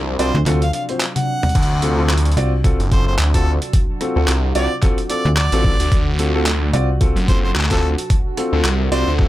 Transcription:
Already playing: C2 C3 F3 F#3 D4
0.19 C2 C4 F4 F#4 C5 D5, closed hi-hat
0.35 D2
0.46 D2 C4 F4 F#4 A4, clap, closed hi-hat
0.62 F5, closed hi-hat
0.73 F5, closed hi-hat
0.89 C4 F4 F#4 C5, closed hi-hat
1.00 clap, closed hi-hat
1.16 F#5, closed hi-hat, high tom
1.43 closed hi-hat, mid tom
1.49 closed hi-hat
1.55 D2 F#4, kick, closed hi-hat, crash
1.63 closed hi-hat
1.82 C4 F4 F#4 A4, closed hi-hat
1.98 C4 F4 F#4 A4
2.10 clap, closed hi-hat
2.17 closed hi-hat
2.25 closed hi-hat
2.32 closed hi-hat
2.37 C2 C4 F4 F#4 D5, closed hi-hat
2.64 C4 F4 F#4 A4, kick, closed hi-hat
2.80 F#1, closed hi-hat
2.92 C4 F4 F#4 A4 C5, kick, closed hi-hat
3.07 C5
3.19 D2, clap, closed hi-hat
3.34 C4 F4 F#4 A4, kick, closed hi-hat
3.62 closed hi-hat
3.73 kick, closed hi-hat
4.01 C4 F4 F#4 A4, cross-stick, closed hi-hat
4.16 D2 C4 F4 F#4 A4
4.28 C2, clap, closed hi-hat
4.55 C2 C4 F4 F#4 D5, closed hi-hat
4.82 C4 F4 F#4 A4, kick, clap, closed hi-hat
4.98 closed hi-hat
5.09 C4 F4 F#4 A4 D5, closed hi-hat
5.25 D2
5.37 D5, clap, closed hi-hat
5.52 A1 C4 F4 F#4 A4, closed hi-hat
5.64 kick
5.80 D2, closed hi-hat
5.92 D2, kick, closed hi-hat
6.19 C4 F4 F#4 A4, closed hi-hat
6.35 C4 F4 F#4 A4
6.46 clap, closed hi-hat
6.73 C2 C4 F4 F#4 D5, closed hi-hat
7.01 C4 F4 F#4 A4, kick, closed hi-hat
7.16 F#1, closed hi-hat
7.28 C4 F4 F#4 A4 C5, kick, closed hi-hat
7.44 C5
7.55 D2, clap
7.61 clap
7.65 clap
7.71 C4 F4 F#4 A4, kick, clap, closed hi-hat
7.74 clap
7.79 clap
7.98 closed hi-hat
8.10 kick, closed hi-hat
8.37 C4 F4 F#4 A4, cross-stick, closed hi-hat
8.53 D2 C4 F4 F#4 A4
8.64 C2, clap, closed hi-hat
8.91 C2 C4 F4 F#4 C5 D5, closed hi-hat
9.07 D2
9.19 C4 F4 F#4 A4, kick, clap

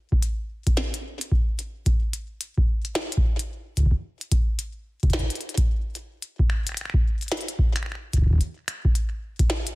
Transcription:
0.12 kick
0.23 closed hi-hat
0.67 kick, closed hi-hat
0.77 snare
0.94 closed hi-hat
1.21 closed hi-hat
1.32 kick
1.59 closed hi-hat
1.86 kick, closed hi-hat
2.13 closed hi-hat
2.41 closed hi-hat
2.58 kick
2.85 closed hi-hat
2.95 snare
3.12 closed hi-hat
3.17 kick
3.39 closed hi-hat
3.77 kick, closed hi-hat
3.80 kick
3.83 kick
3.85 kick
3.91 kick
4.21 closed hi-hat
4.32 kick, closed hi-hat
4.59 closed hi-hat
5.03 kick, closed hi-hat
5.10 kick, snare, closed hi-hat
5.19 kick, closed hi-hat
5.22 kick
5.30 closed hi-hat
5.35 closed hi-hat
5.41 closed hi-hat
5.49 closed hi-hat
5.58 kick, closed hi-hat
5.95 closed hi-hat
6.22 closed hi-hat
6.39 kick
6.50 finger snap
6.67 finger snap, closed hi-hat
6.69 finger snap
6.72 finger snap
6.74 finger snap
6.77 finger snap, closed hi-hat
6.81 finger snap
6.85 finger snap
6.90 finger snap
6.94 kick
7.21 closed hi-hat
7.28 snare, closed hi-hat
7.32 closed hi-hat
7.37 closed hi-hat
7.41 closed hi-hat
7.48 closed hi-hat
7.59 kick
7.76 finger snap, closed hi-hat
7.83 finger snap
7.86 finger snap
7.92 finger snap
7.95 finger snap
8.13 kick, closed hi-hat
8.18 kick
8.22 kick
8.26 kick
8.30 kick
8.33 kick
8.35 kick
8.38 kick, closed hi-hat
8.68 finger snap, closed hi-hat
8.85 kick
8.95 closed hi-hat
9.39 kick, closed hi-hat
9.50 snare
9.67 closed hi-hat

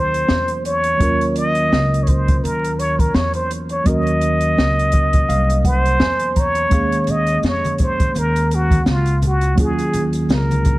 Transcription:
Already playing: D#2 F#3 A#3 C#4 F4 A#4 C5
0.14 closed hi-hat
0.28 E2, snare
0.48 closed hi-hat
0.65 C#5, closed hi-hat
0.84 closed hi-hat
0.97 D#2 F#3 A#3 C#4 F4, kick, closed hi-hat
1.03 A#4
1.21 closed hi-hat
1.36 D#5, closed hi-hat
1.55 closed hi-hat
1.72 C#2, snare
1.94 closed hi-hat
2.03 C#5, closed hi-hat
2.08 C5, kick
2.28 kick, closed hi-hat
2.43 D#2 A#4, closed hi-hat
2.64 closed hi-hat
2.79 C#5, closed hi-hat
2.99 A#4, kick, closed hi-hat
3.15 E2 C#5, snare
3.34 C5, closed hi-hat
3.51 closed hi-hat
3.69 C#5, closed hi-hat
3.84 D#2 F#3 A#3 C#4 F#4 D#5, kick, closed hi-hat
3.89 A#4
4.07 closed hi-hat
4.21 closed hi-hat
4.41 closed hi-hat
4.58 C#2, snare
4.79 closed hi-hat
4.92 D#5, kick, closed hi-hat
5.13 kick, closed hi-hat
5.29 C2 F5, closed hi-hat
5.50 closed hi-hat
5.65 C5 F#5, kick, closed hi-hat
5.85 closed hi-hat
6.00 E2 G#5, snare
6.19 closed hi-hat
6.36 C#5 A#5, kick, closed hi-hat
6.55 closed hi-hat
6.70 D#2 G#3 A#3 C#4 F5, kick, closed hi-hat, maracas
6.74 G#4
6.92 closed hi-hat, maracas
7.07 D#5, closed hi-hat, low conga, maracas
7.27 closed hi-hat, maracas
7.43 F2 C#5, snare, maracas
7.65 closed hi-hat, high conga, maracas
7.78 kick, closed hi-hat, low conga, maracas
7.82 C5
8.00 kick, closed hi-hat, high conga, maracas
8.15 D#2, closed hi-hat, maracas
8.19 A#4
8.36 closed hi-hat, maracas
8.51 F#4, closed hi-hat, maracas
8.71 kick, closed hi-hat, high conga, maracas
8.86 C#2 F4, snare, maracas
9.06 closed hi-hat, maracas
9.22 closed hi-hat, low conga, maracas
9.27 F#4
9.41 closed hi-hat, maracas
9.55 D#2 F#3 A#3 C#4 F4, kick, closed hi-hat, maracas
9.60 G#4
9.79 closed hi-hat, maracas
9.93 closed hi-hat, low conga, maracas
10.13 closed hi-hat, maracas
10.29 C#2 A#4, snare, maracas
10.51 closed hi-hat, high conga, maracas
10.65 kick, closed hi-hat, low conga, maracas

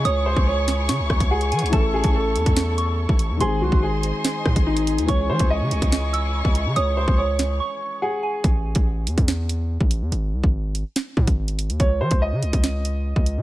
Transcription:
Already playing: E3 G#3 C#4 E4 G#4 C#5 C#6
0.05 C#2 C#5 D#6, closed hi-hat
0.26 C5
0.36 C#2, kick
0.47 C#5
0.68 snare, closed hi-hat
0.89 C#3 C#6, snare, closed hi-hat
0.99 C#2
1.10 C#2, kick, cross-stick
1.20 C#2, kick, closed hi-hat
1.31 G#4 F#5
1.41 closed hi-hat
1.52 E3 G#5, closed hi-hat
1.59 C#2, closed hi-hat
1.66 E3, closed hi-hat
1.72 A1 A3 C#4 A4 A5, kick, closed hi-hat
1.76 A4
1.94 G#4
2.04 A1, kick, closed hi-hat
2.15 A4
2.36 E2, closed hi-hat
2.46 E2, kick, closed hi-hat
2.56 snare, closed hi-hat
2.78 C#6, closed hi-hat
3.09 A1, kick
3.19 closed hi-hat
3.30 E2
3.37 G#1 D#3 G#3 G#4 C5 D#5 C6, closed hi-hat
3.42 C4 G#4
3.61 C2 F#4
3.72 G#1, kick
3.83 G#4
4.03 closed hi-hat
4.24 snare, closed hi-hat
4.46 G#2, kick, cross-stick
4.56 G#1, kick, closed hi-hat
4.67 D#4
4.77 closed hi-hat
4.87 closed hi-hat
4.98 D#2, closed hi-hat
5.05 C#2 E3 G#3 E4 C#5 C#6, kick, closed hi-hat
5.10 C#4 G#4
5.30 E3 C5
5.39 C#2, kick, closed hi-hat
5.50 D#5
5.61 C#3
5.71 C#2, closed hi-hat
5.82 C#2, kick, closed hi-hat
5.92 snare, closed hi-hat
6.13 E6, closed hi-hat
6.45 C#2, kick
6.55 closed hi-hat
6.66 C#3
6.76 C#2 C#5 D#6, closed hi-hat
6.97 C5
7.08 C#2, kick
7.18 C#5
7.39 snare, closed hi-hat
7.60 C#6
8.02 G#4 F#5
8.23 G#5
8.44 A1, kick, closed hi-hat
8.75 A1, kick, closed hi-hat
9.07 E2, closed hi-hat
9.18 E2, kick, closed hi-hat
9.28 snare, closed hi-hat
9.49 closed hi-hat
9.81 A1, kick
9.91 closed hi-hat
10.01 E2
10.12 G#1, closed hi-hat
10.33 C2
10.44 G#1, kick
10.75 closed hi-hat
10.96 snare, closed hi-hat
11.17 G#2, kick
11.27 G#1, kick, closed hi-hat
11.48 closed hi-hat
11.59 closed hi-hat
11.69 D#2, closed hi-hat
11.80 C#2 C#5, kick, closed hi-hat
12.01 E3 C5
12.11 C#2, kick, closed hi-hat
12.22 D#5
12.32 C#3
12.43 C#2, closed hi-hat
12.53 C#2, kick, closed hi-hat
12.64 snare, closed hi-hat
12.85 closed hi-hat
13.16 C#2, kick
13.26 closed hi-hat
13.37 C#3

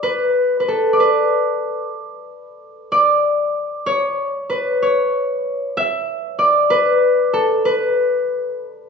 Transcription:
Already playing: D5
0.03 B4
0.60 B4
0.68 A4
0.93 D5
1.00 B4
2.92 D5
3.86 C#5
4.50 B4
4.82 C#5
5.77 E5
6.39 D5
6.70 B4
7.33 A4
7.65 B4

